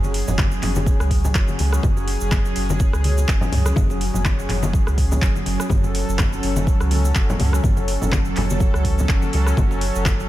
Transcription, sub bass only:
0.00 0.23 F#1 loud
0.28 0.59 F#1 loud
0.62 0.95 F#1 medium
1.00 1.31 C#2 loud
1.35 1.55 F#1 loud
1.59 1.79 C#2 medium
1.83 2.16 F#1 loud
2.21 2.52 F#1 loud
2.56 2.89 F#1 medium
2.93 3.25 C#2 medium
3.28 3.48 F#1 medium
3.53 3.72 C#2 medium
3.77 4.10 F#1 loud
4.15 4.46 F#1 loud
4.50 4.83 F#1 medium
4.87 5.18 C#2 loud
5.22 5.42 F#1 medium
5.46 5.57 F#1 medium
5.70 6.03 F#1 loud
6.08 6.39 F#1 loud
6.43 6.76 F#1 medium
6.81 7.12 C#2 medium
7.15 7.35 F#1 loud
7.40 7.59 C#2 medium
7.64 7.97 F#1 loud
8.02 8.33 F#1 loud
8.36 8.70 F#1 medium
8.74 9.05 C#2 loud
9.09 9.29 F#1 loud
9.34 9.53 C#2 medium
9.57 9.90 F#1 loud
9.95 10.26 F#1 loud

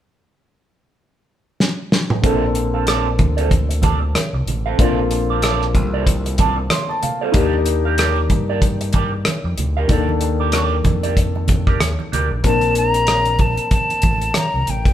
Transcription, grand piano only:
2.22 4.74 D3 medium
2.22 4.75 A#3 medium
2.22 4.75 C4 medium
2.22 4.76 A4 medium
4.78 7.29 D3 medium
4.78 7.30 A#3 medium
4.78 7.31 C4 medium
4.82 7.32 F4 medium
6.71 6.88 C6 medium
6.89 7.01 A5 medium
7.03 7.32 F5 medium
7.32 9.85 A#3 medium
7.32 9.85 D4 medium
7.32 9.84 D#4 medium
7.32 9.86 G4 medium
9.88 12.40 D#3 medium
9.88 12.40 A#3 medium
9.88 12.41 D4 medium
9.88 12.41 A4 medium
12.42 14.93 A#3 medium
12.42 14.93 C4 medium
12.42 14.93 D4 soft
12.42 14.93 A#4 medium

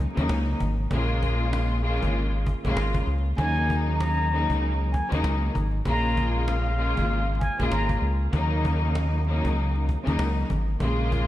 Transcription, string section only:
0.14 0.55 C#3 loud
0.14 0.56 F#3 medium
0.14 0.56 A#3 loud
0.14 0.57 D#4 loud
0.90 1.78 C#3 loud
0.90 1.78 G#3 medium
0.90 1.78 A#3 loud
0.90 1.79 F4 loud
1.81 2.40 C#3 loud
1.81 2.41 G#3 medium
1.81 2.41 A#3 medium
1.81 2.41 F4 loud
2.64 3.04 C#3 loud
2.64 3.04 G#3 medium
2.64 3.05 A#3 medium
2.64 3.05 F4 loud
3.36 4.24 C#3 loud
3.36 4.25 F#3 medium
3.36 4.25 A#3 medium
3.36 4.26 D#4 loud
4.31 4.89 C#3 loud
4.31 4.89 F#3 medium
4.31 4.90 A#3 medium
4.31 4.90 D#4 loud
5.09 5.50 C#3 loud
5.09 5.51 F#3 medium
5.09 5.51 A#3 loud
5.09 5.52 D#4 loud
5.85 6.72 C#3 loud
5.85 6.73 G#3 medium
5.85 6.73 A#3 medium
5.85 6.74 F4 loud
6.76 7.35 C#3 loud
6.76 7.35 G#3 medium
6.76 7.36 A#3 medium
6.76 7.36 F4 loud
7.59 7.99 C#3 loud
7.59 7.99 G#3 medium
7.59 8.00 A#3 medium
7.59 8.00 F4 loud
8.31 9.19 C#3 loud
8.31 9.20 F#3 medium
8.31 9.20 A#3 loud
8.31 9.20 D#4 loud
9.26 9.84 C#3 loud
9.26 9.84 F#3 loud
9.26 9.85 A#3 medium
9.26 9.85 D#4 loud
10.04 10.45 C#3 loud
10.04 10.45 F#3 medium
10.04 10.46 A#3 medium
10.04 10.46 D#4 loud
10.80 11.27 C#3 loud
10.80 11.27 G#3 medium
10.80 11.27 A#3 loud
10.80 11.27 F4 loud

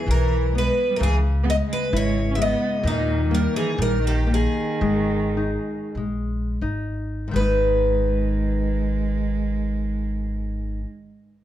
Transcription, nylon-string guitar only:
0.06 0.52 E3 medium
0.55 0.99 B3 medium
1.00 2.80 C#3 medium
1.45 1.90 G#3 medium
1.93 2.37 E4 medium
2.37 2.82 G#3 medium
2.85 3.77 D#3 medium
3.31 3.77 A#3 medium
3.78 4.27 D#3 medium
4.27 4.79 A#3 medium
4.82 5.96 G#3 medium
5.37 5.94 D#4 soft
5.97 6.59 G#3 medium
6.62 7.31 D#4 soft
7.28 10.77 G#2 medium
7.28 10.81 D#3 medium
7.33 10.83 G#3 soft
7.33 7.40 B3 soft
7.40 10.90 D#4 medium

